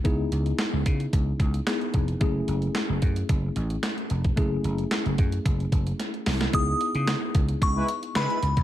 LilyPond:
<<
  \new Staff \with { instrumentName = "Synth bell" } { \time 4/4 \key fis \dorian \tempo 4 = 111 r1 | r1 | r1 | dis'''4. r8 cis'''4 b''4 | }
  \new Staff \with { instrumentName = "Analog polysynth" } { \time 4/4 \key fis \dorian r1 | r1 | r1 | r2 r16 <gis e' b'>16 r8 <gis e' b'>8 r8 | }
  \new Staff \with { instrumentName = "Tine electric piano" } { \time 4/4 \key fis \dorian <b dis' e' gis'>2. <b dis' e' gis'>4 | <a cis' e' gis'>1 | <a cis' e' gis'>1 | <b dis' e' gis'>1 | }
  \new Staff \with { instrumentName = "Slap bass" } { \clef bass \time 4/4 \key fis \dorian cis,8 cis,8 r16 cis,16 cis8 cis,8 cis,8 r8 eis,,8 | fis,,8 fis,,8 r16 fis,,16 fis,8 fis,,8 a,,8 r8 eis,,8 | fis,,8 fis,,8 r16 fis,,16 fis,8 fis,,8 fis,,8 r8 bis,,8 | cis,8 r16 cis8 r16 cis,8 cis,8 r8 cis16 r16 cis,16 bis,,16 | }
  \new DrumStaff \with { instrumentName = "Drums" } \drummode { \time 4/4 <hh bd>8 hh16 hh16 <hc hh sn>8 <hh bd>16 hh16 <hh bd>8 <hh bd>16 hh16 <hc hh sn>16 hh16 <hh bd>16 hh16 | <hh bd>8 hh16 hh16 <hc hh sn>8 <hh bd>16 hh16 <hh bd>8 hh16 hh16 <hc hh sn>16 hh16 hh16 <hh bd>16 | <hh bd>8 hh16 hh16 <hc hh sn>16 hh16 <hh bd>16 hh16 <hh bd>16 hh16 <hh bd>16 hh16 <hh sn>16 hh16 <hho sn>16 <hh sn>16 | <hh bd>8 hh16 hh16 <hc hh sn>8 <hh bd>16 hh16 <hh bd>8 hh16 hh16 <hc hh sn>16 hh16 hh16 <hh bd>16 | }
>>